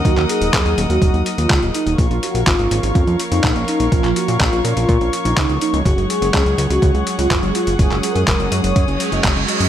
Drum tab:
HH |xxxxxxxxxxxxxxxx|xxxxxxxxxxxxxxxx|xxxxxxxxxxxxxxxx|xxxxxxxxxxxxxxxx|
CP |-x--x-------x---|----x-------x---|-x--x-------x---|----x-------x---|
BD |o---o---o---o---|o---o---o---o---|o---o---o---o---|o---o---o---o---|

HH |xxxxxxxxxxxxxxxx|
CP |-x--x-------x---|
BD |o---o---o---o---|